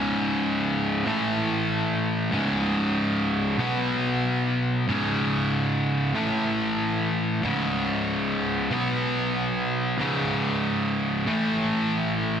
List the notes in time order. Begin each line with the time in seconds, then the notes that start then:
Already playing: C#2 G#2 C#3
1.05 A2 E3 A3
2.31 C#2 G#2 C#3
3.59 B2 F#3 B3
4.88 C#2 G#2 C#3
6.14 A2 E3 A3
7.42 C#2 G#2 C#3
8.71 B2 F#3 B3
9.98 C#2 G#2 C#3
11.26 A2 E3 A3